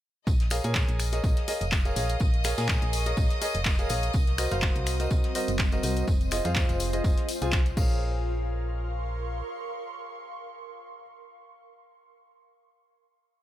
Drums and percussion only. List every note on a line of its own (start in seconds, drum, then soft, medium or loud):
0.27 kick loud
0.27 tambourine medium
0.40 snare soft
0.40 closed hi-hat soft
0.50 finger snap medium
0.50 open hi-hat loud
0.50 tambourine loud
0.50 tambourine medium
0.63 closed hi-hat medium
0.63 tambourine soft
0.75 kick loud
0.75 snare loud
0.75 clap loud
0.75 tambourine medium
0.89 closed hi-hat medium
0.99 finger snap medium
0.99 open hi-hat loud
0.99 tambourine loud
0.99 tambourine medium
1.12 snare soft
1.12 closed hi-hat medium
1.12 tambourine soft
1.24 kick loud
1.24 tambourine medium
1.37 snare medium
1.37 closed hi-hat medium
1.48 open hi-hat loud
1.48 tambourine medium
1.61 closed hi-hat medium
1.61 tambourine soft
1.72 kick loud
1.72 snare loud
1.72 clap loud
1.72 tambourine medium
1.85 closed hi-hat soft
1.85 tambourine soft
1.96 open hi-hat loud
1.96 tambourine medium
2.09 closed hi-hat medium
2.09 tambourine soft
2.20 kick loud
2.20 tambourine medium
2.34 closed hi-hat soft
2.44 finger snap medium
2.44 snare loud
2.44 open hi-hat loud
2.44 tambourine loud
2.44 tambourine medium
2.58 snare loud
2.58 closed hi-hat medium
2.58 tambourine soft
2.58 tambourine medium
2.69 kick loud
2.69 snare loud
2.69 clap loud
2.69 tambourine medium
2.82 closed hi-hat medium
2.93 open hi-hat loud
2.93 tambourine medium
3.06 closed hi-hat medium
3.06 tambourine soft
3.17 kick loud
3.17 tambourine medium
3.30 snare soft
3.30 closed hi-hat medium
3.42 open hi-hat loud
3.42 tambourine loud
3.42 tambourine medium
3.54 closed hi-hat medium
3.54 tambourine soft
3.65 kick loud
3.65 snare loud
3.65 clap loud
3.65 tambourine medium
3.79 closed hi-hat soft
3.79 tambourine soft
3.89 open hi-hat loud
3.89 tambourine medium
3.89 tambourine loud
4.03 closed hi-hat medium
4.03 tambourine soft
4.13 kick loud
4.13 tambourine medium
4.27 snare soft
4.27 closed hi-hat soft
4.38 finger snap medium
4.38 open hi-hat loud
4.38 tambourine loud
4.38 tambourine medium
4.51 closed hi-hat medium
4.51 tambourine soft
4.62 kick loud
4.62 snare loud
4.62 clap loud
4.62 tambourine medium
4.76 closed hi-hat medium
4.86 finger snap medium
4.86 open hi-hat loud
4.86 tambourine medium
4.86 tambourine loud
5.00 snare soft
5.00 closed hi-hat medium
5.00 tambourine soft
5.10 kick loud
5.10 tambourine medium
5.24 snare soft
5.24 closed hi-hat medium
5.35 open hi-hat loud
5.35 tambourine medium
5.48 closed hi-hat medium
5.48 tambourine soft
5.59 kick loud
5.59 snare loud
5.59 clap loud
5.59 tambourine medium
5.72 closed hi-hat soft
5.72 tambourine soft
5.83 open hi-hat loud
5.83 tambourine loud
5.83 tambourine medium
5.96 closed hi-hat medium
5.96 tambourine soft
6.07 kick loud
6.07 tambourine medium
6.21 closed hi-hat soft
6.21 tambourine soft
6.31 finger snap medium
6.31 open hi-hat loud
6.31 tambourine loud
6.31 tambourine medium
6.45 closed hi-hat medium
6.45 tambourine soft
6.55 kick loud
6.55 snare loud
6.55 clap loud
6.55 tambourine medium
6.69 closed hi-hat medium
6.69 tambourine soft
6.80 open hi-hat loud
6.80 tambourine loud
6.80 tambourine medium
6.93 closed hi-hat medium
6.93 tambourine soft
7.04 kick loud
7.04 tambourine medium
7.04 tambourine soft
7.18 snare soft
7.18 closed hi-hat medium
7.29 open hi-hat loud
7.29 tambourine loud
7.29 tambourine medium
7.42 closed hi-hat medium
7.42 tambourine soft
7.52 kick loud
7.52 snare loud
7.52 clap loud
7.52 tambourine medium
7.66 closed hi-hat soft
7.66 tambourine soft
7.77 kick loud
7.77 crash medium
7.77 tambourine medium
7.90 tambourine soft